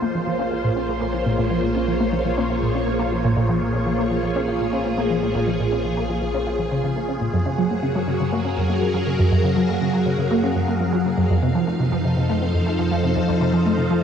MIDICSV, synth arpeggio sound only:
0, 0, Header, 1, 2, 480
1, 0, Start_track
1, 0, Key_signature, -5, "minor"
1, 0, Tempo, 495868
1, 1338, Time_signature, 4, 2, 24, 8
1, 13586, End_track
2, 0, Start_track
2, 0, Title_t, "Synth arpeggio sound"
2, 0, Program_c, 0, 84
2, 20, Note_on_c, 0, 58, 100
2, 72, Note_off_c, 0, 58, 0
2, 141, Note_on_c, 0, 53, 77
2, 227, Note_off_c, 0, 53, 0
2, 261, Note_on_c, 0, 53, 76
2, 373, Note_off_c, 0, 53, 0
2, 379, Note_on_c, 0, 61, 104
2, 467, Note_off_c, 0, 61, 0
2, 499, Note_on_c, 0, 65, 77
2, 587, Note_off_c, 0, 65, 0
2, 620, Note_on_c, 0, 46, 73
2, 672, Note_off_c, 0, 46, 0
2, 740, Note_on_c, 0, 61, 74
2, 792, Note_off_c, 0, 61, 0
2, 861, Note_on_c, 0, 58, 81
2, 948, Note_off_c, 0, 58, 0
2, 981, Note_on_c, 0, 58, 104
2, 1032, Note_off_c, 0, 58, 0
2, 1101, Note_on_c, 0, 53, 71
2, 1188, Note_off_c, 0, 53, 0
2, 1220, Note_on_c, 0, 46, 100
2, 1272, Note_off_c, 0, 46, 0
2, 1340, Note_on_c, 0, 46, 100
2, 1427, Note_off_c, 0, 46, 0
2, 1460, Note_on_c, 0, 53, 98
2, 1547, Note_off_c, 0, 53, 0
2, 1580, Note_on_c, 0, 46, 78
2, 1693, Note_off_c, 0, 46, 0
2, 1699, Note_on_c, 0, 61, 76
2, 1751, Note_off_c, 0, 61, 0
2, 1818, Note_on_c, 0, 53, 78
2, 1932, Note_off_c, 0, 53, 0
2, 1938, Note_on_c, 0, 58, 101
2, 1991, Note_off_c, 0, 58, 0
2, 2057, Note_on_c, 0, 53, 81
2, 2146, Note_off_c, 0, 53, 0
2, 2178, Note_on_c, 0, 53, 75
2, 2292, Note_off_c, 0, 53, 0
2, 2298, Note_on_c, 0, 61, 104
2, 2386, Note_off_c, 0, 61, 0
2, 2419, Note_on_c, 0, 65, 82
2, 2506, Note_off_c, 0, 65, 0
2, 2538, Note_on_c, 0, 46, 73
2, 2591, Note_off_c, 0, 46, 0
2, 2658, Note_on_c, 0, 61, 74
2, 2711, Note_off_c, 0, 61, 0
2, 2777, Note_on_c, 0, 58, 84
2, 2866, Note_off_c, 0, 58, 0
2, 2897, Note_on_c, 0, 58, 107
2, 2950, Note_off_c, 0, 58, 0
2, 3018, Note_on_c, 0, 53, 75
2, 3106, Note_off_c, 0, 53, 0
2, 3138, Note_on_c, 0, 46, 103
2, 3191, Note_off_c, 0, 46, 0
2, 3258, Note_on_c, 0, 46, 101
2, 3346, Note_off_c, 0, 46, 0
2, 3378, Note_on_c, 0, 53, 101
2, 3466, Note_off_c, 0, 53, 0
2, 3498, Note_on_c, 0, 46, 72
2, 3612, Note_off_c, 0, 46, 0
2, 3618, Note_on_c, 0, 61, 73
2, 3671, Note_off_c, 0, 61, 0
2, 3739, Note_on_c, 0, 53, 79
2, 3852, Note_off_c, 0, 53, 0
2, 3858, Note_on_c, 0, 58, 107
2, 3911, Note_off_c, 0, 58, 0
2, 3977, Note_on_c, 0, 53, 77
2, 4066, Note_off_c, 0, 53, 0
2, 4098, Note_on_c, 0, 53, 73
2, 4212, Note_off_c, 0, 53, 0
2, 4219, Note_on_c, 0, 61, 105
2, 4306, Note_off_c, 0, 61, 0
2, 4338, Note_on_c, 0, 65, 76
2, 4426, Note_off_c, 0, 65, 0
2, 4459, Note_on_c, 0, 46, 72
2, 4511, Note_off_c, 0, 46, 0
2, 4579, Note_on_c, 0, 61, 73
2, 4631, Note_off_c, 0, 61, 0
2, 4697, Note_on_c, 0, 58, 80
2, 4786, Note_off_c, 0, 58, 0
2, 4819, Note_on_c, 0, 58, 106
2, 4871, Note_off_c, 0, 58, 0
2, 4939, Note_on_c, 0, 53, 72
2, 5027, Note_off_c, 0, 53, 0
2, 5059, Note_on_c, 0, 46, 99
2, 5111, Note_off_c, 0, 46, 0
2, 5179, Note_on_c, 0, 46, 109
2, 5267, Note_off_c, 0, 46, 0
2, 5299, Note_on_c, 0, 53, 98
2, 5386, Note_off_c, 0, 53, 0
2, 5420, Note_on_c, 0, 46, 75
2, 5533, Note_off_c, 0, 46, 0
2, 5539, Note_on_c, 0, 61, 73
2, 5591, Note_off_c, 0, 61, 0
2, 5660, Note_on_c, 0, 53, 79
2, 5773, Note_off_c, 0, 53, 0
2, 5781, Note_on_c, 0, 58, 99
2, 5832, Note_off_c, 0, 58, 0
2, 5900, Note_on_c, 0, 53, 80
2, 5987, Note_off_c, 0, 53, 0
2, 6019, Note_on_c, 0, 53, 75
2, 6133, Note_off_c, 0, 53, 0
2, 6139, Note_on_c, 0, 61, 103
2, 6227, Note_off_c, 0, 61, 0
2, 6260, Note_on_c, 0, 65, 79
2, 6347, Note_off_c, 0, 65, 0
2, 6379, Note_on_c, 0, 53, 76
2, 6467, Note_off_c, 0, 53, 0
2, 6500, Note_on_c, 0, 49, 75
2, 6607, Note_off_c, 0, 49, 0
2, 6619, Note_on_c, 0, 49, 79
2, 6733, Note_off_c, 0, 49, 0
2, 6739, Note_on_c, 0, 58, 76
2, 6852, Note_off_c, 0, 58, 0
2, 6858, Note_on_c, 0, 61, 74
2, 6972, Note_off_c, 0, 61, 0
2, 6978, Note_on_c, 0, 46, 72
2, 7066, Note_off_c, 0, 46, 0
2, 7100, Note_on_c, 0, 42, 102
2, 7187, Note_off_c, 0, 42, 0
2, 7219, Note_on_c, 0, 49, 100
2, 7306, Note_off_c, 0, 49, 0
2, 7339, Note_on_c, 0, 54, 102
2, 7427, Note_off_c, 0, 54, 0
2, 7460, Note_on_c, 0, 58, 76
2, 7512, Note_off_c, 0, 58, 0
2, 7579, Note_on_c, 0, 49, 81
2, 7692, Note_off_c, 0, 49, 0
2, 7699, Note_on_c, 0, 54, 104
2, 7751, Note_off_c, 0, 54, 0
2, 7818, Note_on_c, 0, 49, 82
2, 7906, Note_off_c, 0, 49, 0
2, 7939, Note_on_c, 0, 49, 74
2, 8053, Note_off_c, 0, 49, 0
2, 8058, Note_on_c, 0, 58, 102
2, 8146, Note_off_c, 0, 58, 0
2, 8178, Note_on_c, 0, 61, 77
2, 8266, Note_off_c, 0, 61, 0
2, 8297, Note_on_c, 0, 42, 74
2, 8351, Note_off_c, 0, 42, 0
2, 8417, Note_on_c, 0, 58, 73
2, 8470, Note_off_c, 0, 58, 0
2, 8536, Note_on_c, 0, 54, 78
2, 8625, Note_off_c, 0, 54, 0
2, 8656, Note_on_c, 0, 54, 106
2, 8710, Note_off_c, 0, 54, 0
2, 8778, Note_on_c, 0, 49, 70
2, 8866, Note_off_c, 0, 49, 0
2, 8897, Note_on_c, 0, 42, 101
2, 8950, Note_off_c, 0, 42, 0
2, 9017, Note_on_c, 0, 42, 106
2, 9106, Note_off_c, 0, 42, 0
2, 9136, Note_on_c, 0, 49, 103
2, 9225, Note_off_c, 0, 49, 0
2, 9257, Note_on_c, 0, 54, 103
2, 9346, Note_off_c, 0, 54, 0
2, 9377, Note_on_c, 0, 58, 77
2, 9430, Note_off_c, 0, 58, 0
2, 9498, Note_on_c, 0, 49, 79
2, 9612, Note_off_c, 0, 49, 0
2, 9619, Note_on_c, 0, 54, 99
2, 9671, Note_off_c, 0, 54, 0
2, 9739, Note_on_c, 0, 49, 77
2, 9827, Note_off_c, 0, 49, 0
2, 9858, Note_on_c, 0, 49, 77
2, 9972, Note_off_c, 0, 49, 0
2, 9979, Note_on_c, 0, 58, 105
2, 10067, Note_off_c, 0, 58, 0
2, 10100, Note_on_c, 0, 61, 81
2, 10187, Note_off_c, 0, 61, 0
2, 10220, Note_on_c, 0, 42, 74
2, 10272, Note_off_c, 0, 42, 0
2, 10339, Note_on_c, 0, 58, 78
2, 10391, Note_off_c, 0, 58, 0
2, 10458, Note_on_c, 0, 54, 85
2, 10546, Note_off_c, 0, 54, 0
2, 10578, Note_on_c, 0, 54, 100
2, 10631, Note_off_c, 0, 54, 0
2, 10699, Note_on_c, 0, 49, 72
2, 10787, Note_off_c, 0, 49, 0
2, 10818, Note_on_c, 0, 42, 97
2, 10871, Note_off_c, 0, 42, 0
2, 10939, Note_on_c, 0, 41, 109
2, 11026, Note_off_c, 0, 41, 0
2, 11059, Note_on_c, 0, 48, 101
2, 11147, Note_off_c, 0, 48, 0
2, 11179, Note_on_c, 0, 53, 100
2, 11267, Note_off_c, 0, 53, 0
2, 11299, Note_on_c, 0, 57, 76
2, 11352, Note_off_c, 0, 57, 0
2, 11420, Note_on_c, 0, 48, 78
2, 11533, Note_off_c, 0, 48, 0
2, 11540, Note_on_c, 0, 53, 105
2, 11592, Note_off_c, 0, 53, 0
2, 11660, Note_on_c, 0, 48, 85
2, 11747, Note_off_c, 0, 48, 0
2, 11781, Note_on_c, 0, 48, 77
2, 11893, Note_off_c, 0, 48, 0
2, 11901, Note_on_c, 0, 57, 108
2, 11988, Note_off_c, 0, 57, 0
2, 12020, Note_on_c, 0, 60, 79
2, 12107, Note_off_c, 0, 60, 0
2, 12139, Note_on_c, 0, 41, 76
2, 12191, Note_off_c, 0, 41, 0
2, 12259, Note_on_c, 0, 57, 78
2, 12312, Note_off_c, 0, 57, 0
2, 12379, Note_on_c, 0, 53, 88
2, 12466, Note_off_c, 0, 53, 0
2, 12500, Note_on_c, 0, 53, 106
2, 12552, Note_off_c, 0, 53, 0
2, 12619, Note_on_c, 0, 48, 76
2, 12707, Note_off_c, 0, 48, 0
2, 12739, Note_on_c, 0, 41, 104
2, 12791, Note_off_c, 0, 41, 0
2, 12860, Note_on_c, 0, 41, 106
2, 12947, Note_off_c, 0, 41, 0
2, 12979, Note_on_c, 0, 48, 98
2, 13067, Note_off_c, 0, 48, 0
2, 13099, Note_on_c, 0, 53, 97
2, 13186, Note_off_c, 0, 53, 0
2, 13219, Note_on_c, 0, 57, 75
2, 13271, Note_off_c, 0, 57, 0
2, 13339, Note_on_c, 0, 48, 83
2, 13452, Note_off_c, 0, 48, 0
2, 13459, Note_on_c, 0, 53, 106
2, 13511, Note_off_c, 0, 53, 0
2, 13586, End_track
0, 0, End_of_file